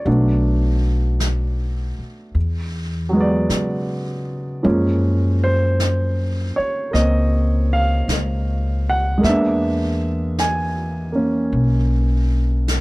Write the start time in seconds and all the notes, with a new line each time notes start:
Already playing: D5
0.05 B1 F#3 A3 B3 D4, brush sweep
1.20 brush sweep, snare, hi-hat pedal
1.99 muted upright bass stroke
2.35 E2, brush sweep
3.09 F#3 G#3
3.17 B3 D5
3.49 C#3, brush sweep, snare, hi-hat pedal
4.63 F#2 F3 G#3 A#3 C#4, brush sweep
5.44 C5
5.80 brush sweep, snare, hi-hat pedal
6.56 C#5, muted upright bass stroke
6.91 C#2 A#3 C4 D#5, brush sweep, snare
7.73 F5
8.08 C#2, brush sweep, snare, hi-hat pedal
8.90 F#5
9.18 G#3 A#3
9.23 E2 B3 E5, brush sweep, snare
9.29 D4
10.38 G#5, brush sweep, snare, hi-hat pedal
11.12 A#3 C#4
11.52 B1, brush sweep
12.68 brush sweep, snare, hi-hat pedal